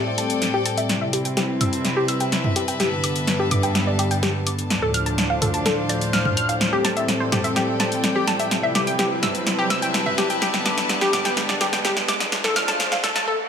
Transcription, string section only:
Already playing: A4 D5 G5
0.89 C4
1.18 B4
1.46 A5
1.52 E5
2.80 G3
4.71 D4
4.94 C5
5.09 F5
6.61 A4
7.08 D5
7.47 G5
8.51 C4
8.61 B4
8.78 E5
9.05 A5
10.42 G3
12.32 D4
12.59 C5 F5

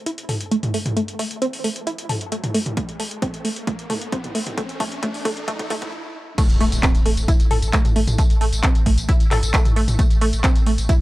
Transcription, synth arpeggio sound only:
0.06 E4
0.29 A4
0.51 A3
0.74 A3
0.97 A3
1.19 A3
1.42 C4
1.64 A3
1.87 E4
2.09 A4
2.32 A3
2.54 A3
2.77 A3
3.00 A3
3.22 C4
3.45 A3
3.67 A3
3.90 A3
4.12 C4
4.35 A3
4.58 A3
4.80 A3
5.03 A3
5.25 A3
5.48 A3
5.70 A3
6.38 A3
6.61 A3
6.83 C4
7.06 A3
7.28 E4
7.51 A4
7.73 A3
7.96 A3
8.18 A3
8.41 A3
8.64 C4
8.86 A3
9.09 E4
9.31 A4
9.54 A3
9.76 A3
9.99 A3
10.21 A3
10.44 C4
10.67 A3
10.89 E4

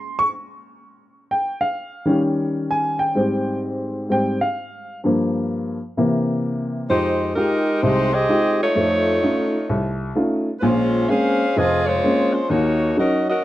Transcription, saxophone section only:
6.89 G#3 D#4 G4 C5
7.36 G#3 D#4 G4 A#4
7.83 G#3 D#4 G4 C5
8.14 C4 G4 G#4 D#5
8.63 A3 D#4 F4 C#5
10.59 G#3 C#4 F4 B4 C5
11.09 C#4 G#4 C5 F5
11.58 C4 F4 G#4 D#5
11.86 G#3 F4 C5 C#5
12.34 G#3 C#4 F4 C5
12.49 A#3 D#4 F#4 C#5
12.99 C#4 F#4 A#4 D#5
13.29 C#4 F#4 A#4 D#5

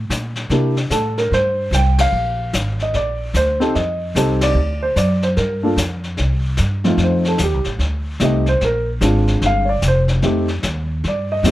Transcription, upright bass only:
0.10 A#2
0.50 C3
0.90 A2
1.31 G2
1.71 C2
2.12 A#1
2.54 G#1
2.94 A#1
3.34 D2
3.75 F2
4.15 C2
4.54 D2
4.96 F#2
5.37 G2
5.77 F2
6.19 C2
6.59 G2
6.97 F2
7.40 D#2
7.54 C2
7.66 A1
7.79 D2
8.20 C2
8.61 A#1
9.01 G#1
9.42 G1
9.82 F1
10.23 F2
10.63 D#2
11.04 G2
11.43 F2

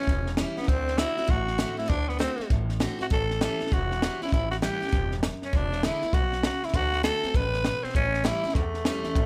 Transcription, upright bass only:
0.07 E1
0.57 muted upright bass stroke
0.68 D2
1.19 muted upright bass stroke
1.29 A1
1.79 muted upright bass stroke
1.90 D2
2.39 muted upright bass stroke
2.51 A1
3.00 muted upright bass stroke
3.10 A1
3.61 muted upright bass stroke
3.72 E1
4.22 muted upright bass stroke
4.32 A1
4.82 muted upright bass stroke
4.93 E1
5.42 muted upright bass stroke
5.53 E1
6.03 muted upright bass stroke
6.13 B1
6.63 muted upright bass stroke
6.74 D2
7.23 muted upright bass stroke
7.35 A1
7.84 muted upright bass stroke
7.95 A1
8.44 muted upright bass stroke
8.55 E2
9.04 muted upright bass stroke
9.15 A1

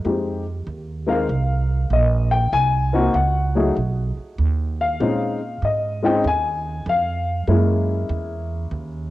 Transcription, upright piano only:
0.05 G#3 C4 D#4 G4
1.07 G#3 C4 D#4 A#4 F5
1.93 D#5
2.31 G5
2.53 G#5
2.93 A#3 C4 D#4 F#4
3.15 F#5
3.55 F#3 A3 D#4 G#4
4.81 F5
5.00 G#3 C4 C#4 D#4
5.65 D#5
6.03 G#3 C4 C#4 D#4 G5
6.27 G#5
6.89 F5
7.48 G#3 A#3 C#4 E4

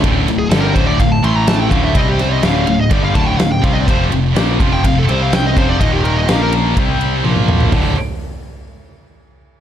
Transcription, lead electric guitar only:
0.39 G#4
0.51 A4
0.61 A#4
0.74 C5
0.86 D5
0.99 F5
1.12 A5
1.24 C6
1.35 A#5
1.48 A5
1.60 G5
1.71 F5
1.85 E5
1.97 D#5
2.09 G4
2.21 C5
2.32 D#5
2.46 F5
2.81 D#5
2.92 D5
3.04 F5
3.15 A5
3.27 G5
3.39 F5
3.52 G5
3.64 F5
3.73 D#5
3.81 D5
3.88 C5
4.73 G5
4.87 F5
4.99 A4
5.11 C5
5.22 F5
5.34 G5
5.47 D#5
5.58 C5
5.69 D5
5.80 D#5
5.92 G4
6.05 A#4
6.17 D#5
6.29 F5
6.43 A#4

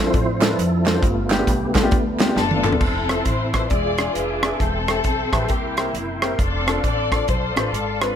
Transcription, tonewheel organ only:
Already playing: F3 C4 E4 C5
0.40 A4
0.86 A4
1.01 A3 B3 F4
1.30 G4
2.19 F4
2.34 D4
2.80 A4 E5 C6
3.71 G#4 E5 D6
4.60 A4 G5 C6
5.50 A#4
6.38 A4 D5 F5

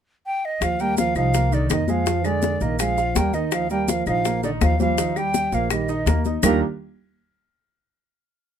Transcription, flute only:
0.26 G5
0.45 D#5
0.63 F5
0.81 G5
0.98 F5
1.17 F5
1.54 D5
1.72 D#5
1.90 F5
2.25 D5
2.62 D#5
2.80 F5
3.16 G5
3.34 D#5
3.53 F5
3.71 G5
3.89 F5
4.08 F5
4.44 D5
4.63 F5
4.81 F5
5.17 G5
5.54 F5
5.72 D#5
6.44 A#4

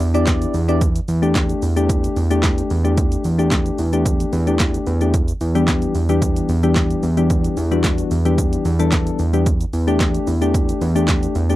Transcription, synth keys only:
0.14 B3 D4 E4 G4 D5
0.68 B3 D4 E4 G4 D5
1.22 A3 D4 G4
1.76 A3 D4 G4
2.30 A3 D4 G4
2.84 A3 D4 G4
3.38 A3 D4 G4
3.93 A3 D4 G4
4.47 A3 D4 G4
5.01 A3 D4 G4
5.55 E3 G3 B3 D4 G4
6.09 E3 G3 B3 D4 G4
6.63 E3 G3 B3 D4 G4
7.17 E3 G3 B3 D4 G4
7.71 E3 G3 B3 D4 F#4
8.25 E3 G3 B3 D4 G4
8.79 E3 G3 B3 D4 A4
9.33 E3 G3 B3 D4 G4
9.87 A3 D4 G4
10.42 A3 D4 G4
10.95 A3 D4 G4
11.50 A3 D4 G4

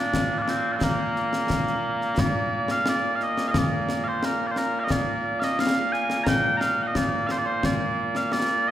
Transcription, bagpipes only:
Already playing: A#2 A#3 D4
0.38 D4 F4
0.49 C4
0.73 C4 D4
0.83 A#3
2.20 D5
2.71 F5
2.89 D5
3.15 F5
3.23 D#5
3.47 D#5 F5
3.58 D5
4.04 F5
4.08 C5
4.25 A#4
4.47 D5
4.51 C5
4.58 A#4
4.80 F5
4.84 D#5
4.91 D5
5.39 D#5 F5
5.60 F5
5.92 G#5
6.24 G5 A#5
6.57 F5 A#5
6.83 G5
6.87 D#5
6.96 D5
7.27 F5
7.31 C5
7.38 D5
7.46 C5
7.65 D5
8.16 F5
8.32 D5
8.68 D#5

